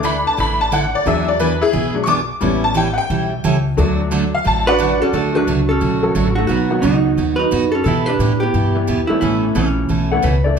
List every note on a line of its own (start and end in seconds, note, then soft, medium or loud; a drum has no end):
0.00 0.25 D2 medium
0.00 0.15 D3 medium
0.00 1.02 E3 medium
0.00 1.02 A3 medium
0.00 0.15 A3 medium
0.00 1.03 D4 medium
0.00 0.16 D4 medium
0.04 0.16 E4 medium
0.04 0.16 A4 medium
0.04 0.26 B5 loud
0.27 0.38 A5 loud
0.37 0.93 A1 medium
0.37 0.60 D3 medium
0.37 0.60 A3 medium
0.37 0.60 D4 medium
0.37 0.60 E4 medium
0.37 0.60 A4 medium
0.37 0.60 B5 loud
0.61 0.72 A5 loud
0.72 0.84 D3 medium
0.72 0.84 A3 medium
0.72 0.84 D4 medium
0.72 0.84 E4 medium
0.72 0.84 A4 medium
0.72 0.94 F#5 medium
0.95 1.06 D5 loud
1.05 1.61 E2 medium
1.05 1.28 E3 medium
1.05 1.59 F#3 medium
1.05 1.59 G#3 medium
1.05 1.28 B3 medium
1.05 1.28 D4 medium
1.05 1.59 D4 medium
1.05 1.28 G#4 medium
1.05 1.28 E5 medium
1.28 1.40 D5 medium
1.39 1.51 E3 medium
1.39 1.52 B3 medium
1.39 1.52 D4 medium
1.39 1.52 G#4 medium
1.39 1.61 B4 medium
1.61 1.93 E4 medium
1.61 1.95 G#4 loud
1.73 2.28 B1 medium
1.73 1.95 E3 medium
1.73 1.96 B3 medium
1.73 1.95 D4 medium
1.73 1.96 G#4 medium
1.94 2.06 F#3 medium
1.94 2.07 G#3 soft
1.94 2.07 D4 medium
2.04 2.19 E3 medium
2.04 2.19 B3 medium
2.04 2.19 D4 medium
2.04 2.19 G#4 medium
2.04 2.07 C#6 medium
2.08 2.41 D6 loud
2.40 2.97 A1 medium
2.40 2.63 E3 medium
2.40 2.94 G3 medium
2.40 2.63 G3 medium
2.40 2.95 B3 medium
2.40 2.64 C#4 medium
2.40 2.95 C#4 medium
2.40 2.64 E4 medium
2.40 2.64 A4 medium
2.64 2.76 A5 loud
2.74 2.87 E3 medium
2.74 2.87 G3 medium
2.74 2.87 C#4 medium
2.74 2.87 E4 medium
2.74 2.87 A4 medium
2.74 2.96 G5 loud
2.93 2.95 F#5 medium
2.98 3.64 G5 loud
3.10 3.39 B1 medium
3.10 3.32 E3 medium
3.10 3.32 G3 medium
3.10 3.32 C#4 medium
3.10 3.32 E4 medium
3.10 3.32 A4 medium
3.44 3.73 C#2 medium
3.44 3.55 E3 medium
3.44 3.56 G3 medium
3.44 3.56 C#4 medium
3.44 3.56 E4 loud
3.44 3.56 A4 medium
3.77 4.32 D2 loud
3.77 4.00 D3 medium
3.77 4.30 F#3 medium
3.77 4.00 F#3 medium
3.77 4.31 A3 medium
3.77 4.00 A3 medium
3.77 4.31 D4 medium
3.77 4.00 D4 medium
3.77 4.00 F#4 medium
4.11 4.23 D3 medium
4.11 4.23 F#3 medium
4.11 4.23 A3 medium
4.11 4.23 D4 medium
4.11 4.24 F#4 medium
4.34 4.46 F5 medium
4.44 5.00 A1 medium
4.44 4.67 D3 medium
4.44 4.67 F#3 medium
4.44 4.67 A3 medium
4.44 4.67 D4 medium
4.44 4.67 F#4 medium
4.44 4.68 A5 loud
4.67 5.00 D4 medium
4.67 4.98 F#4 medium
4.67 4.99 B4 loud
4.67 5.11 D5 medium
4.67 5.13 F#5 loud
4.78 4.91 D3 medium
4.78 4.91 F#3 medium
4.78 4.91 A3 medium
4.78 4.91 D4 medium
4.78 4.91 F#4 medium
4.99 5.14 C#4 medium
4.99 5.10 F#4 medium
4.99 5.13 A4 loud
5.11 5.46 D2 medium
5.11 5.35 D3 medium
5.11 5.35 F#3 medium
5.11 5.36 A3 medium
5.11 5.36 D4 medium
5.11 5.32 F#4 medium
5.11 5.36 F#4 medium
5.11 5.35 A4 loud
5.15 5.35 D4 medium
5.32 5.47 F#3 medium
5.32 5.47 A3 medium
5.32 5.47 D4 medium
5.32 5.65 F#4 medium
5.32 5.47 F#4 medium
5.32 5.47 A4 medium
5.32 5.68 B4 loud
5.37 5.68 D4 medium
5.47 5.80 C#2 medium
5.47 5.59 D3 medium
5.47 5.59 F#3 medium
5.47 5.60 A3 medium
5.47 5.60 D4 medium
5.47 5.60 F#4 medium
5.65 6.32 F#4 medium
5.65 6.35 A4 medium
5.71 6.34 C#4 medium
5.81 6.15 B1 medium
5.81 6.03 D3 medium
5.81 6.03 F#3 medium
5.81 6.03 A3 medium
5.81 6.03 D4 medium
5.81 6.04 F#4 medium
6.02 6.47 D3 medium
6.02 6.47 F#3 medium
6.02 6.47 A3 medium
6.02 6.47 F#4 medium
6.02 6.47 A4 medium
6.15 6.49 A1 medium
6.15 6.27 D3 medium
6.15 6.27 F#3 medium
6.15 6.27 A3 medium
6.15 6.27 D4 medium
6.15 6.27 F#4 medium
6.35 6.50 A3 medium
6.35 6.45 D4 medium
6.35 6.46 F#4 medium
6.46 6.83 B1 medium
6.46 6.71 B2 medium
6.46 6.71 F#3 medium
6.46 6.71 B3 medium
6.46 6.79 D#4 medium
6.46 6.72 D#4 medium
6.46 6.84 F#4 medium
6.46 6.71 F#4 medium
6.51 6.82 B3 medium
6.70 7.15 D#3 medium
6.70 7.15 F#3 medium
6.70 7.15 B3 medium
6.70 7.15 D#4 medium
6.70 7.15 F#4 medium
6.81 7.17 C#2 medium
6.81 6.95 B2 medium
6.81 6.95 F#3 medium
6.81 7.34 B3 medium
6.81 6.95 B3 medium
6.81 7.38 D#4 medium
6.81 6.95 D#4 medium
6.81 6.96 F#4 medium
6.85 7.37 F#3 medium
7.17 7.51 D#2 medium
7.17 7.40 B2 medium
7.17 7.40 F#3 medium
7.17 7.40 B3 medium
7.17 7.40 D#4 medium
7.17 7.40 F#4 medium
7.35 7.69 F#4 medium
7.35 7.69 B4 loud
7.39 7.71 D#4 medium
7.51 7.85 F#2 medium
7.51 7.63 B2 medium
7.51 7.64 F#3 medium
7.51 7.63 B3 medium
7.51 7.64 D#4 medium
7.51 7.64 F#4 medium
7.70 7.83 F#4 medium
7.70 7.83 A4 medium
7.75 7.86 C#4 medium
7.84 8.07 B2 medium
7.84 8.19 B2 medium
7.84 8.08 E3 medium
7.84 8.08 B3 medium
7.84 8.08 E4 medium
7.84 8.06 E4 medium
7.84 8.08 G4 medium
7.84 8.08 A4 medium
8.06 8.40 D4 medium
8.06 8.40 G4 medium
8.06 8.42 B4 medium
8.19 8.53 A2 medium
8.19 8.32 B2 medium
8.19 8.32 E3 medium
8.19 8.32 B3 medium
8.19 8.32 E4 medium
8.19 8.32 G4 medium
8.40 9.06 B3 medium
8.40 9.05 E4 medium
8.40 9.11 G4 medium
8.54 8.87 G2 medium
8.54 8.76 B2 medium
8.54 8.76 E3 medium
8.54 8.76 B3 medium
8.54 8.76 E4 medium
8.54 8.76 G4 medium
8.74 8.86 E3 medium
8.74 8.86 G3 medium
8.74 8.87 B3 medium
8.74 8.87 E4 medium
8.74 8.87 G4 medium
8.87 9.09 E2 medium
8.87 8.99 B2 medium
8.87 8.99 E3 medium
8.87 8.99 B3 medium
8.87 9.00 E4 medium
8.87 9.00 G4 medium
9.07 9.53 E3 medium
9.07 9.21 G3 medium
9.07 9.53 A3 medium
9.07 9.53 B3 medium
9.07 9.18 C#4 medium
9.07 9.54 C#4 medium
9.07 9.20 E4 medium
9.07 9.54 E4 medium
9.07 muted upright bass stroke soft
9.19 9.55 A1 medium
9.19 9.43 B2 medium
9.19 9.44 E3 medium
9.19 9.44 A3 medium
9.19 9.54 A3 medium
9.19 9.52 C#4 medium
9.19 9.44 C#4 medium
9.19 9.57 E4 medium
9.19 9.44 A4 medium
9.55 9.89 A#1 medium
9.55 9.67 B2 medium
9.55 9.67 E3 medium
9.55 10.20 E3 medium
9.55 9.67 A3 medium
9.55 10.20 A3 medium
9.55 10.20 C#4 medium
9.55 9.67 C#4 medium
9.55 9.68 A4 medium
9.89 10.23 B1 medium
9.89 10.11 B2 medium
9.89 10.11 E3 medium
9.89 10.11 A3 medium
9.89 10.11 C#4 medium
9.89 10.12 A4 medium
10.12 10.23 E3 medium
10.12 10.23 A3 medium
10.12 10.23 B3 medium
10.12 10.23 C#4 medium
10.12 10.23 E4 medium
10.12 10.24 F#5 medium
10.22 10.57 C#2 medium
10.22 10.35 B2 medium
10.22 10.35 E3 medium
10.22 10.35 A3 medium
10.22 10.35 C#4 medium
10.22 10.35 A4 medium
10.22 10.45 B4 medium
10.44 10.59 D3 medium
10.44 10.59 E3 medium
10.44 10.59 A3 medium
10.44 10.59 D4 medium
10.44 10.59 E4 medium
10.44 10.57 D5 medium